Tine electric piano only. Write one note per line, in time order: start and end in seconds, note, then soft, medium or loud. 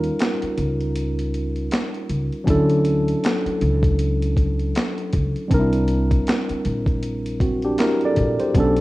0.00 2.42 G3 medium
0.00 2.43 C#4 medium
0.00 2.44 D#4 medium
0.00 2.45 F4 medium
0.00 2.49 A#4 medium
2.44 5.45 F#3 medium
2.44 5.46 C#4 medium
2.44 5.47 D4 medium
2.49 5.48 E4 medium
2.49 5.48 A4 medium
5.48 8.49 G3 medium
5.48 7.36 C4 medium
5.48 7.37 D4 medium
5.53 5.59 D#4 medium
5.53 7.39 A#4 medium
5.59 7.41 E4 medium
7.41 7.62 C4 soft
7.41 7.62 F#4 medium
7.65 7.79 D4 medium
7.65 7.79 G4 medium
7.80 8.01 E4 medium
7.80 8.01 A#4 medium
8.05 8.40 A4 medium
8.05 8.39 D5 medium
8.40 8.76 G4 medium
8.40 8.76 C5 medium
8.54 8.81 F#3 medium
8.54 8.81 B3 medium
8.54 8.81 C#4 medium
8.58 8.81 D4 medium
8.58 8.81 A4 medium